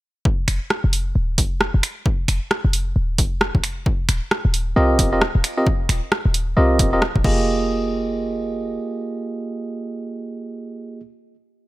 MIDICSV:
0, 0, Header, 1, 4, 480
1, 0, Start_track
1, 0, Key_signature, -4, "minor"
1, 0, Tempo, 451128
1, 268, Time_signature, 4, 2, 24, 8
1, 12424, End_track
2, 0, Start_track
2, 0, Title_t, "Tine electric piano"
2, 0, Program_c, 0, 4
2, 5068, Note_on_c, 0, 60, 92
2, 5068, Note_on_c, 0, 65, 82
2, 5068, Note_on_c, 0, 67, 85
2, 5068, Note_on_c, 0, 70, 82
2, 5068, Note_on_c, 0, 75, 100
2, 5419, Note_off_c, 0, 60, 0
2, 5419, Note_off_c, 0, 65, 0
2, 5419, Note_off_c, 0, 67, 0
2, 5419, Note_off_c, 0, 70, 0
2, 5419, Note_off_c, 0, 75, 0
2, 5453, Note_on_c, 0, 60, 83
2, 5453, Note_on_c, 0, 65, 73
2, 5453, Note_on_c, 0, 67, 72
2, 5453, Note_on_c, 0, 70, 70
2, 5453, Note_on_c, 0, 75, 87
2, 5550, Note_off_c, 0, 60, 0
2, 5551, Note_off_c, 0, 65, 0
2, 5551, Note_off_c, 0, 67, 0
2, 5551, Note_off_c, 0, 70, 0
2, 5551, Note_off_c, 0, 75, 0
2, 5932, Note_on_c, 0, 65, 76
2, 5933, Note_on_c, 0, 60, 83
2, 5933, Note_on_c, 0, 67, 75
2, 5933, Note_on_c, 0, 70, 74
2, 5933, Note_on_c, 0, 75, 90
2, 6030, Note_off_c, 0, 60, 0
2, 6030, Note_off_c, 0, 65, 0
2, 6030, Note_off_c, 0, 67, 0
2, 6030, Note_off_c, 0, 70, 0
2, 6030, Note_off_c, 0, 75, 0
2, 6987, Note_on_c, 0, 75, 97
2, 6988, Note_on_c, 0, 60, 91
2, 6988, Note_on_c, 0, 65, 82
2, 6988, Note_on_c, 0, 67, 85
2, 6988, Note_on_c, 0, 70, 82
2, 7339, Note_off_c, 0, 60, 0
2, 7339, Note_off_c, 0, 65, 0
2, 7339, Note_off_c, 0, 67, 0
2, 7339, Note_off_c, 0, 70, 0
2, 7339, Note_off_c, 0, 75, 0
2, 7374, Note_on_c, 0, 60, 81
2, 7374, Note_on_c, 0, 67, 73
2, 7374, Note_on_c, 0, 70, 76
2, 7374, Note_on_c, 0, 75, 88
2, 7375, Note_on_c, 0, 65, 76
2, 7471, Note_off_c, 0, 60, 0
2, 7471, Note_off_c, 0, 65, 0
2, 7471, Note_off_c, 0, 67, 0
2, 7471, Note_off_c, 0, 70, 0
2, 7471, Note_off_c, 0, 75, 0
2, 7709, Note_on_c, 0, 58, 82
2, 7709, Note_on_c, 0, 65, 75
2, 7709, Note_on_c, 0, 67, 76
2, 7709, Note_on_c, 0, 68, 77
2, 7709, Note_on_c, 0, 75, 93
2, 11703, Note_off_c, 0, 58, 0
2, 11703, Note_off_c, 0, 65, 0
2, 11703, Note_off_c, 0, 67, 0
2, 11703, Note_off_c, 0, 68, 0
2, 11703, Note_off_c, 0, 75, 0
2, 12424, End_track
3, 0, Start_track
3, 0, Title_t, "808-style bass"
3, 0, Program_c, 1, 38
3, 509, Note_on_c, 1, 29, 96
3, 631, Note_off_c, 1, 29, 0
3, 895, Note_on_c, 1, 29, 96
3, 1204, Note_off_c, 1, 29, 0
3, 1229, Note_on_c, 1, 27, 80
3, 1469, Note_on_c, 1, 29, 83
3, 1484, Note_off_c, 1, 27, 0
3, 1816, Note_off_c, 1, 29, 0
3, 1855, Note_on_c, 1, 29, 88
3, 1933, Note_off_c, 1, 29, 0
3, 2429, Note_on_c, 1, 29, 100
3, 2550, Note_off_c, 1, 29, 0
3, 2815, Note_on_c, 1, 29, 98
3, 3124, Note_off_c, 1, 29, 0
3, 3148, Note_on_c, 1, 27, 78
3, 3389, Note_on_c, 1, 29, 80
3, 3405, Note_off_c, 1, 27, 0
3, 3736, Note_off_c, 1, 29, 0
3, 3775, Note_on_c, 1, 29, 93
3, 3853, Note_off_c, 1, 29, 0
3, 4349, Note_on_c, 1, 27, 99
3, 4470, Note_off_c, 1, 27, 0
3, 4734, Note_on_c, 1, 27, 102
3, 5043, Note_off_c, 1, 27, 0
3, 5069, Note_on_c, 1, 36, 83
3, 5308, Note_on_c, 1, 27, 80
3, 5324, Note_off_c, 1, 36, 0
3, 5656, Note_off_c, 1, 27, 0
3, 5694, Note_on_c, 1, 27, 95
3, 5773, Note_off_c, 1, 27, 0
3, 6268, Note_on_c, 1, 27, 105
3, 6390, Note_off_c, 1, 27, 0
3, 6655, Note_on_c, 1, 27, 101
3, 6964, Note_off_c, 1, 27, 0
3, 6989, Note_on_c, 1, 36, 88
3, 7228, Note_on_c, 1, 27, 84
3, 7244, Note_off_c, 1, 36, 0
3, 7576, Note_off_c, 1, 27, 0
3, 7614, Note_on_c, 1, 27, 95
3, 7693, Note_off_c, 1, 27, 0
3, 7709, Note_on_c, 1, 29, 96
3, 9346, Note_off_c, 1, 29, 0
3, 12424, End_track
4, 0, Start_track
4, 0, Title_t, "Drums"
4, 268, Note_on_c, 9, 36, 105
4, 375, Note_off_c, 9, 36, 0
4, 509, Note_on_c, 9, 26, 64
4, 509, Note_on_c, 9, 46, 97
4, 615, Note_off_c, 9, 26, 0
4, 615, Note_off_c, 9, 46, 0
4, 749, Note_on_c, 9, 26, 29
4, 749, Note_on_c, 9, 37, 105
4, 855, Note_off_c, 9, 26, 0
4, 855, Note_off_c, 9, 37, 0
4, 989, Note_on_c, 9, 46, 89
4, 1095, Note_off_c, 9, 46, 0
4, 1468, Note_on_c, 9, 36, 93
4, 1469, Note_on_c, 9, 46, 103
4, 1575, Note_off_c, 9, 36, 0
4, 1575, Note_off_c, 9, 46, 0
4, 1709, Note_on_c, 9, 37, 109
4, 1815, Note_off_c, 9, 37, 0
4, 1949, Note_on_c, 9, 26, 56
4, 1949, Note_on_c, 9, 46, 94
4, 2056, Note_off_c, 9, 26, 0
4, 2056, Note_off_c, 9, 46, 0
4, 2188, Note_on_c, 9, 36, 110
4, 2295, Note_off_c, 9, 36, 0
4, 2429, Note_on_c, 9, 26, 65
4, 2429, Note_on_c, 9, 46, 100
4, 2535, Note_off_c, 9, 26, 0
4, 2535, Note_off_c, 9, 46, 0
4, 2669, Note_on_c, 9, 26, 29
4, 2669, Note_on_c, 9, 37, 106
4, 2775, Note_off_c, 9, 26, 0
4, 2775, Note_off_c, 9, 37, 0
4, 2908, Note_on_c, 9, 46, 88
4, 3015, Note_off_c, 9, 46, 0
4, 3388, Note_on_c, 9, 46, 97
4, 3389, Note_on_c, 9, 36, 100
4, 3494, Note_off_c, 9, 46, 0
4, 3495, Note_off_c, 9, 36, 0
4, 3628, Note_on_c, 9, 37, 119
4, 3734, Note_off_c, 9, 37, 0
4, 3774, Note_on_c, 9, 36, 60
4, 3868, Note_on_c, 9, 26, 58
4, 3868, Note_on_c, 9, 46, 92
4, 3881, Note_off_c, 9, 36, 0
4, 3975, Note_off_c, 9, 26, 0
4, 3975, Note_off_c, 9, 46, 0
4, 4108, Note_on_c, 9, 36, 113
4, 4215, Note_off_c, 9, 36, 0
4, 4348, Note_on_c, 9, 26, 62
4, 4348, Note_on_c, 9, 46, 94
4, 4455, Note_off_c, 9, 26, 0
4, 4455, Note_off_c, 9, 46, 0
4, 4589, Note_on_c, 9, 26, 29
4, 4589, Note_on_c, 9, 37, 111
4, 4695, Note_off_c, 9, 26, 0
4, 4695, Note_off_c, 9, 37, 0
4, 4828, Note_on_c, 9, 46, 83
4, 4935, Note_off_c, 9, 46, 0
4, 5308, Note_on_c, 9, 36, 102
4, 5309, Note_on_c, 9, 46, 97
4, 5414, Note_off_c, 9, 36, 0
4, 5415, Note_off_c, 9, 46, 0
4, 5549, Note_on_c, 9, 37, 124
4, 5655, Note_off_c, 9, 37, 0
4, 5789, Note_on_c, 9, 26, 57
4, 5789, Note_on_c, 9, 46, 91
4, 5895, Note_off_c, 9, 26, 0
4, 5895, Note_off_c, 9, 46, 0
4, 6028, Note_on_c, 9, 36, 111
4, 6134, Note_off_c, 9, 36, 0
4, 6269, Note_on_c, 9, 26, 62
4, 6269, Note_on_c, 9, 46, 93
4, 6375, Note_off_c, 9, 26, 0
4, 6375, Note_off_c, 9, 46, 0
4, 6509, Note_on_c, 9, 26, 29
4, 6509, Note_on_c, 9, 37, 115
4, 6615, Note_off_c, 9, 26, 0
4, 6615, Note_off_c, 9, 37, 0
4, 6749, Note_on_c, 9, 46, 86
4, 6855, Note_off_c, 9, 46, 0
4, 7228, Note_on_c, 9, 36, 104
4, 7228, Note_on_c, 9, 46, 96
4, 7335, Note_off_c, 9, 36, 0
4, 7335, Note_off_c, 9, 46, 0
4, 7468, Note_on_c, 9, 37, 126
4, 7575, Note_off_c, 9, 37, 0
4, 7614, Note_on_c, 9, 36, 66
4, 7708, Note_off_c, 9, 36, 0
4, 7708, Note_on_c, 9, 36, 109
4, 7708, Note_on_c, 9, 49, 84
4, 7814, Note_off_c, 9, 49, 0
4, 7815, Note_off_c, 9, 36, 0
4, 12424, End_track
0, 0, End_of_file